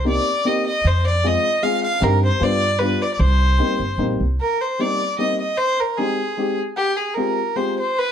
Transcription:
Already playing: upright bass C2
0.05 upright piano A#3 C4 D#4 G4, violin D5
0.45 upright piano A#3 C4 D#4 G4, violin D#5
0.67 violin D#5
0.85 upright bass F2, violin C5
1.07 violin D5
1.24 upright piano G#3 C4 F4 G#4, violin D#5
1.62 upright piano G#3 C4 F4 G#4, violin F5
1.84 violin F5
2.00 upright bass G2, upright piano G3 C4 D#4 G4, violin A#4
2.25 violin C5
2.39 upright bass G2, upright piano G3 B3 D4 F4, violin D5
2.79 upright piano G3 B3 D4 F4, violin B4
3.02 violin D5
3.14 violin D5
3.19 upright bass C2, violin C5
3.58 upright piano G3 A#3 C4 D#4
3.79 upright bass G1
3.98 upright bass A#1, upright piano G3 A#3 C4 D#4
4.20 upright bass C2
4.41 violin A#4
4.61 violin C5
4.79 upright piano G3 A#3 C4 D#4, violin D5
5.18 upright piano G3 A#3 C4 D#4, violin D#5
5.41 violin D#5
5.57 violin C5
5.80 violin A#4
5.97 upright piano G#3 C4 D#4 G4, violin G#4
6.37 upright piano G#3 C4 D#4 G4
6.77 violin G4
6.96 violin G#4
7.14 upright piano G#3 C4, violin A#4
7.18 upright piano F4 G4
7.55 upright piano G#3 C4 F4 G4, violin C5
7.80 violin C5
7.99 violin B4

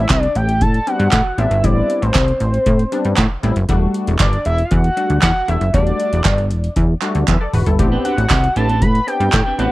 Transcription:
Already playing: analog synth lead E5
0.09 analog synth bass C2, kick, snare, clap, closed hi-hat
0.23 analog synth lead D5, closed hi-hat
0.35 analog synth bass A1, analog synth lead G5, closed hi-hat
0.49 closed hi-hat
0.61 analog synth bass A2, analog synth lead A5, kick, closed hi-hat
0.74 closed hi-hat
0.87 analog polysynth G3 B3 C4 D4, analog synth lead F#5, closed hi-hat
1.00 analog synth bass G2, closed hi-hat
1.12 analog synth bass A2, kick, snare, clap, closed hi-hat
1.38 analog synth bass A1, analog polysynth G3 B3 C4 D4, analog synth lead E5, closed hi-hat
1.51 analog synth bass G1, closed hi-hat
1.64 analog synth bass A1, analog polysynth G3 B3 C4 E4, analog synth lead D5, kick, closed hi-hat
1.90 closed hi-hat
2.02 analog synth bass A1, analog synth lead C5, closed hi-hat
2.14 analog synth bass C2, kick, snare, clap, closed hi-hat
2.28 closed hi-hat
2.40 analog synth bass A1, closed hi-hat
2.54 closed hi-hat
2.66 analog synth bass A2, kick, closed hi-hat
2.79 closed hi-hat
2.92 analog polysynth G3 B3 C4 D4, closed hi-hat
3.05 analog synth bass G2, closed hi-hat
3.17 analog synth bass A2, kick, snare, clap, closed hi-hat
3.43 analog synth bass A1, analog polysynth G3 B3 C4 E4, closed hi-hat
3.56 analog synth bass F#1, closed hi-hat
3.69 analog synth bass E1, analog polysynth G3 A3 D4 F#4, kick, closed hi-hat
3.94 closed hi-hat
4.07 analog synth bass E1, closed hi-hat
4.19 analog synth bass G1, analog synth lead D5, kick, snare, clap, closed hi-hat
4.33 closed hi-hat
4.45 analog synth bass E1, analog synth lead E5, closed hi-hat
4.58 closed hi-hat
4.65 analog synth lead F5
4.71 analog synth bass E2, analog synth lead F#5, kick, closed hi-hat
4.84 closed hi-hat
4.97 analog polysynth G3 A3 D4 F#4, closed hi-hat
5.10 analog synth bass D2, closed hi-hat
5.22 analog synth bass E2, analog synth lead F#5, kick, snare, clap, closed hi-hat
5.48 analog synth bass E1, analog polysynth G3 A3 D4 E4, analog synth lead E5, closed hi-hat
5.61 analog synth bass F#1, closed hi-hat
5.74 analog synth bass E1, analog polysynth G3 A3 D4 F#4, analog synth lead D5, kick, closed hi-hat
5.87 closed hi-hat
6.00 closed hi-hat
6.13 analog synth bass E1, closed hi-hat
6.24 analog synth bass G1, kick, snare, clap, closed hi-hat
6.38 closed hi-hat
6.51 analog synth bass E1, closed hi-hat
6.64 closed hi-hat
6.76 analog synth bass E2, kick, closed hi-hat
7.01 analog polysynth G3 A3 D4 F#4, clap, closed hi-hat
7.15 analog synth bass D2, closed hi-hat
7.28 analog synth bass E2, analog polysynth B4 E5, kick, clap, closed hi-hat, high tom
7.41 analog polysynth A4 D5
7.53 analog synth bass E1, analog polysynth F#4 B4, mid tom, open hi-hat
7.66 analog synth bass G1, analog polysynth E4 A4, closed hi-hat, floor tom
7.79 analog synth bass A1, analog polysynth B3 C4 D4 G4, muted clean electric guitar stroke, kick, closed hi-hat
7.92 clean electric guitar C4 D4 G4 B4
8.05 clean electric guitar C4 D4 G4 B4, analog synth lead F#5, closed hi-hat
8.17 analog synth bass A1, muted clean electric guitar stroke, closed hi-hat
8.30 analog synth bass C2, kick, snare, clap, closed hi-hat
8.43 muted clean electric guitar stroke, closed hi-hat
8.56 analog synth bass A1, clean electric guitar C4 D4 G4 B4, analog synth lead A5, closed hi-hat
8.69 clean electric guitar C4 D4 G4 B4, closed hi-hat
8.82 analog synth bass A2, analog synth lead B5, muted clean electric guitar stroke, kick, closed hi-hat
8.95 muted clean electric guitar stroke, closed hi-hat
9.07 analog polysynth B3 C4 D4 G4, analog synth lead G5, closed hi-hat
9.20 analog synth bass G2, muted clean electric guitar stroke, closed hi-hat
9.33 analog synth bass A2, kick, snare, clap, closed hi-hat
9.46 clean electric guitar C4 D4 G4 B4
9.58 analog synth bass A1, analog polysynth B3 C4 D4 G4, clean electric guitar C4 D4 G4 B4, analog synth lead F#5, closed hi-hat

